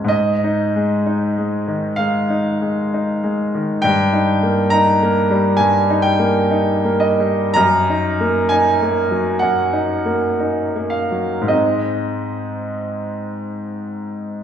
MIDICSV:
0, 0, Header, 1, 2, 480
1, 0, Start_track
1, 0, Tempo, 946372
1, 53, Time_signature, 4, 2, 24, 8
1, 1491, Tempo, 898204
1, 3411, Tempo, 1056338
1, 3891, Tempo, 918836
1, 4851, Tempo, 972447
1, 5331, Tempo, 1132075
1, 7042, End_track
2, 0, Start_track
2, 0, Title_t, "Grand piano"
2, 0, Program_c, 0, 0
2, 0, Control_c, 0, 64, 127
2, 0, Note_on_c, 0, 37, 34
2, 0, Note_on_c, 0, 44, 29
2, 0, Note_on_c, 0, 56, 27
2, 0, Note_on_c, 0, 61, 32
2, 22, Note_off_c, 0, 44, 0
2, 22, Note_on_c, 0, 44, 51
2, 42, Note_on_c, 0, 75, 69
2, 52, Note_off_c, 0, 56, 0
2, 61, Control_c, 0, 64, 0
2, 64, Note_off_c, 0, 37, 0
2, 66, Note_off_c, 0, 61, 0
2, 157, Control_c, 0, 64, 127
2, 223, Note_on_c, 0, 63, 41
2, 385, Note_on_c, 0, 56, 39
2, 478, Note_off_c, 0, 63, 0
2, 539, Note_on_c, 0, 63, 45
2, 635, Note_off_c, 0, 56, 0
2, 701, Note_on_c, 0, 56, 35
2, 791, Note_off_c, 0, 63, 0
2, 850, Note_on_c, 0, 51, 39
2, 953, Note_off_c, 0, 56, 0
2, 979, Note_off_c, 0, 44, 0
2, 995, Note_on_c, 0, 77, 68
2, 1009, Note_on_c, 0, 56, 38
2, 1010, Note_off_c, 0, 75, 0
2, 1110, Note_off_c, 0, 51, 0
2, 1166, Note_on_c, 0, 63, 40
2, 1269, Note_off_c, 0, 56, 0
2, 1327, Note_on_c, 0, 56, 38
2, 1424, Note_off_c, 0, 63, 0
2, 1490, Note_on_c, 0, 63, 39
2, 1583, Note_off_c, 0, 56, 0
2, 1649, Note_on_c, 0, 56, 43
2, 1747, Note_off_c, 0, 63, 0
2, 1814, Note_on_c, 0, 51, 41
2, 1905, Note_off_c, 0, 56, 0
2, 1959, Note_off_c, 0, 77, 0
2, 1960, Note_on_c, 0, 79, 88
2, 1971, Note_off_c, 0, 51, 0
2, 1971, Note_on_c, 0, 43, 64
2, 1980, Control_c, 0, 64, 0
2, 2053, Control_c, 0, 64, 127
2, 2126, Note_on_c, 0, 63, 41
2, 2286, Note_on_c, 0, 58, 43
2, 2380, Note_off_c, 0, 63, 0
2, 2433, Note_on_c, 0, 82, 86
2, 2439, Note_off_c, 0, 79, 0
2, 2445, Note_on_c, 0, 63, 49
2, 2539, Note_off_c, 0, 58, 0
2, 2606, Note_on_c, 0, 58, 48
2, 2698, Note_off_c, 0, 63, 0
2, 2756, Note_on_c, 0, 55, 49
2, 2858, Note_off_c, 0, 58, 0
2, 2895, Note_on_c, 0, 80, 75
2, 2900, Note_off_c, 0, 43, 0
2, 2910, Note_on_c, 0, 43, 49
2, 2915, Note_off_c, 0, 82, 0
2, 3015, Note_off_c, 0, 55, 0
2, 3074, Note_on_c, 0, 63, 51
2, 3138, Note_on_c, 0, 79, 80
2, 3149, Note_off_c, 0, 80, 0
2, 3228, Note_on_c, 0, 58, 47
2, 3339, Note_off_c, 0, 63, 0
2, 3400, Note_on_c, 0, 63, 45
2, 3493, Note_off_c, 0, 58, 0
2, 3553, Note_on_c, 0, 58, 47
2, 3623, Note_on_c, 0, 75, 64
2, 3634, Note_off_c, 0, 79, 0
2, 3657, Note_off_c, 0, 63, 0
2, 3715, Note_on_c, 0, 55, 41
2, 3822, Note_off_c, 0, 58, 0
2, 3867, Note_off_c, 0, 43, 0
2, 3867, Note_on_c, 0, 82, 93
2, 3878, Note_on_c, 0, 42, 66
2, 3879, Note_off_c, 0, 75, 0
2, 3884, Note_off_c, 0, 55, 0
2, 3900, Control_c, 0, 64, 0
2, 4009, Control_c, 0, 64, 127
2, 4052, Note_on_c, 0, 63, 49
2, 4213, Note_on_c, 0, 58, 51
2, 4315, Note_off_c, 0, 63, 0
2, 4362, Note_on_c, 0, 80, 80
2, 4370, Note_off_c, 0, 82, 0
2, 4375, Note_on_c, 0, 63, 47
2, 4469, Note_off_c, 0, 58, 0
2, 4537, Note_on_c, 0, 58, 43
2, 4627, Note_off_c, 0, 63, 0
2, 4686, Note_on_c, 0, 54, 50
2, 4787, Note_off_c, 0, 58, 0
2, 4823, Note_off_c, 0, 42, 0
2, 4833, Note_on_c, 0, 78, 70
2, 4840, Note_off_c, 0, 80, 0
2, 4847, Note_on_c, 0, 42, 43
2, 4938, Note_off_c, 0, 54, 0
2, 5000, Note_on_c, 0, 63, 46
2, 5162, Note_on_c, 0, 58, 39
2, 5261, Note_off_c, 0, 63, 0
2, 5330, Note_on_c, 0, 63, 40
2, 5421, Note_off_c, 0, 58, 0
2, 5484, Note_on_c, 0, 58, 40
2, 5543, Note_on_c, 0, 77, 56
2, 5553, Note_off_c, 0, 78, 0
2, 5576, Note_off_c, 0, 63, 0
2, 5635, Note_on_c, 0, 54, 31
2, 5737, Note_off_c, 0, 58, 0
2, 5762, Note_on_c, 0, 44, 50
2, 5784, Note_off_c, 0, 42, 0
2, 5787, Note_on_c, 0, 56, 33
2, 5790, Note_on_c, 0, 75, 59
2, 5792, Note_on_c, 0, 60, 34
2, 5794, Note_off_c, 0, 77, 0
2, 5796, Note_on_c, 0, 63, 33
2, 5800, Note_off_c, 0, 54, 0
2, 5811, Control_c, 0, 64, 0
2, 5911, Control_c, 0, 64, 127
2, 7042, Note_off_c, 0, 44, 0
2, 7042, Note_off_c, 0, 56, 0
2, 7042, Note_off_c, 0, 60, 0
2, 7042, Note_off_c, 0, 63, 0
2, 7042, Note_off_c, 0, 75, 0
2, 7042, End_track
0, 0, End_of_file